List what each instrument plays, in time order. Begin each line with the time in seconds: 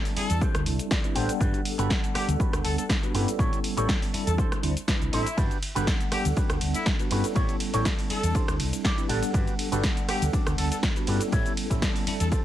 Already playing: tine electric piano G3 B3 C#4 E4 A4
0.05 muted clean electric guitar stroke, open hi-hat, shaker
0.16 tine electric piano G3 C4 D4 E4 A4, horn section A4, muted fingered electric bass stroke, open hi-hat
0.30 fingered electric bass E2, closed hi-hat, shaker
0.41 clean electric guitar D4 G4 A4 C5, kick, shaker
0.55 fingered electric bass D2, cross-stick, closed hi-hat, shaker
0.66 fingered electric bass C2, open hi-hat
0.79 muted clean electric guitar stroke, closed hi-hat, shaker
0.91 clean electric guitar D5, kick, snare, shaker
1.04 tine electric piano G3 C4 D4 E4 B4, closed hi-hat, shaker
1.15 fingered electric bass A1, tine electric piano G3 B3 D4 A4 F#5, clean electric guitar D4 G4 A4 C5 G5, open hi-hat
1.29 closed hi-hat, shaker
1.40 fingered electric bass G1, clean electric guitar D4 F#4 G4 B4, kick, shaker
1.54 closed hi-hat, shaker
1.65 open hi-hat
1.78 fingered electric bass G1, tine electric piano G3 B3 D4 A4 F#5, clean electric guitar D4 F#4 G4 B4, closed hi-hat, shaker
1.90 kick, snare, shaker
2.03 muted clean electric guitar stroke, closed hi-hat, shaker
2.14 tine electric piano G3 B3 D4 A4 F#5, horn section G4, muted fingered electric bass stroke, cross-stick, open hi-hat
2.28 fingered electric bass D2, closed hi-hat, shaker
2.39 clean electric guitar D4 F#4 G4 B4, muted fingered electric bass stroke, kick, shaker
2.53 fingered electric bass D2, cross-stick, closed hi-hat, shaker
2.64 fingered electric bass D2, horn section A4, open hi-hat
2.78 horn section A4, muted clean electric guitar stroke, closed hi-hat, shaker
2.89 kick, snare, shaker
3.03 tine electric piano G3 B3 D4 F#4 B4, closed hi-hat, shaker
3.14 fingered electric bass G2, tine electric piano G3 B3 C#4 E4 A4, clean electric guitar D4 F#4 G4 B4, open hi-hat
3.28 closed hi-hat, shaker
3.39 fingered electric bass A1, clean electric guitar E4 G4 A4 C#5, kick, shaker
3.53 closed hi-hat, shaker
3.64 open hi-hat
3.77 fingered electric bass A1, tine electric piano G3 B3 C#4 E4 A4, clean electric guitar E4 G4 A4 C#5, closed hi-hat, shaker
3.89 kick, snare, shaker
4.02 muted clean electric guitar stroke, open hi-hat, shaker
4.13 tine electric piano G3 C4 D4 E4 A4, muted fingered electric bass stroke, open hi-hat
4.27 fingered electric bass E2, horn section A4, closed hi-hat, shaker
4.38 clean electric guitar D4 G4 A4 C5, horn section A4, kick, shaker
4.52 muted fingered electric bass stroke, cross-stick, closed hi-hat, shaker
4.63 fingered electric bass D2, tine electric piano G3 C4 D4 E4 C5, open hi-hat
4.77 muted clean electric guitar stroke, closed hi-hat, shaker
4.87 tine electric piano G3 C4 D4 E4 B4, kick, snare, shaker
5.01 fingered electric bass C2, closed hi-hat, shaker
5.12 fingered electric bass A1, tine electric piano G3 C4 D4 E4 A4, clean electric guitar D4 G4 A4 C5, horn section E4, open hi-hat
5.26 closed hi-hat, shaker
5.37 fingered electric bass G1, clean electric guitar D4 F#4 G4 B4, kick, ride, shaker
5.51 closed hi-hat, shaker
5.63 open hi-hat, ride
5.75 fingered electric bass G1, tine electric piano G3 B3 D4 A4 F#5, clean electric guitar D4 F#4 G4 B4, closed hi-hat, shaker
5.87 kick, snare, ride, shaker
6.00 muted clean electric guitar stroke, closed hi-hat, shaker
6.11 tine electric piano G3 B3 D4 A4 F#5, horn section G4, muted fingered electric bass stroke, cross-stick, open hi-hat, ride
6.25 fingered electric bass D2, closed hi-hat, shaker
6.36 clean electric guitar D4 F#4 G4 B4, muted fingered electric bass stroke, kick, ride, shaker
6.50 fingered electric bass D2, cross-stick, closed hi-hat, shaker
6.61 fingered electric bass D2, open hi-hat, ride
6.74 horn section E4, muted clean electric guitar stroke, closed hi-hat, shaker
6.86 kick, snare, ride, shaker
6.99 tine electric piano G3 B3 D4 F#4 B4, closed hi-hat, shaker
7.10 fingered electric bass G2, tine electric piano G3 B3 C#4 E4 A4, clean electric guitar D4 F#4 G4 B4, open hi-hat, ride
7.24 closed hi-hat, shaker
7.35 fingered electric bass A1, clean electric guitar E4 G4 A4 C#5, kick, ride, shaker
7.49 closed hi-hat, shaker
7.60 open hi-hat, ride
7.73 fingered electric bass A1, tine electric piano G3 B3 C#4 E4 A4, clean electric guitar E4 G4 A4 C#5, closed hi-hat, shaker
7.85 kick, snare, ride, shaker
7.99 muted clean electric guitar stroke, open hi-hat, shaker
8.09 tine electric piano G3 C4 D4 E4 A4, horn section A4, muted fingered electric bass stroke, open hi-hat, ride
8.23 fingered electric bass E2, closed hi-hat, shaker
8.34 clean electric guitar D4 G4 A4 C5, kick, ride, shaker
8.48 fingered electric bass D2, cross-stick, closed hi-hat, shaker
8.60 fingered electric bass C2, open hi-hat, ride
8.72 muted clean electric guitar stroke, closed hi-hat, shaker
8.85 clean electric guitar D5, kick, snare, ride, shaker
8.97 tine electric piano G3 C4 D4 E4 B4, closed hi-hat, shaker
9.08 fingered electric bass A1, tine electric piano G3 B3 D4 A4 F#5, clean electric guitar D4 G4 A4 D5 F#5, open hi-hat, ride
9.23 closed hi-hat, shaker
9.33 fingered electric bass G1, clean electric guitar D4 F#4 G4 B4, kick, ride, shaker
9.47 closed hi-hat, shaker
9.59 open hi-hat, ride
9.72 fingered electric bass G1, tine electric piano G3 B3 D4 A4 F#5, clean electric guitar D4 F#4 G4 B4, closed hi-hat, shaker
9.84 kick, snare, ride, shaker
9.97 muted clean electric guitar stroke, closed hi-hat, shaker
10.08 tine electric piano G3 B3 D4 A4 F#5, horn section G4, muted fingered electric bass stroke, cross-stick, open hi-hat, ride
10.22 fingered electric bass D2, closed hi-hat, shaker
10.33 clean electric guitar D4 F#4 G4 A4, muted fingered electric bass stroke, kick, ride, shaker
10.47 fingered electric bass D2, cross-stick, closed hi-hat, shaker
10.58 fingered electric bass D2, horn section A4, open hi-hat, ride
10.71 horn section A4, muted clean electric guitar stroke, closed hi-hat, shaker
10.83 kick, snare, ride, shaker
10.96 tine electric piano G3 B3 D4 F#4 B4, closed hi-hat, shaker
11.07 fingered electric bass G2, tine electric piano G3 B3 C#4 E4 A4, clean electric guitar D4 F#4 G4 B4, open hi-hat, ride
11.21 closed hi-hat, shaker
11.32 fingered electric bass A1, clean electric guitar E4 G4 A4 C#5, kick, ride, shaker
11.46 closed hi-hat, shaker
11.57 open hi-hat, ride
11.70 fingered electric bass A1, tine electric piano G3 B3 C#4 E4 A4, clean electric guitar E4 G4 A4 C#5, kick, closed hi-hat, shaker
11.82 kick, snare, ride, shaker
11.95 muted clean electric guitar stroke, open hi-hat, shaker
12.07 tine electric piano G3 C4 D4 E4 A4, muted fingered electric bass stroke, open hi-hat, ride
12.20 fingered electric bass E2, horn section A4, closed hi-hat, shaker
12.32 clean electric guitar D4 G4 A4 C5, horn section A4, kick, ride, shaker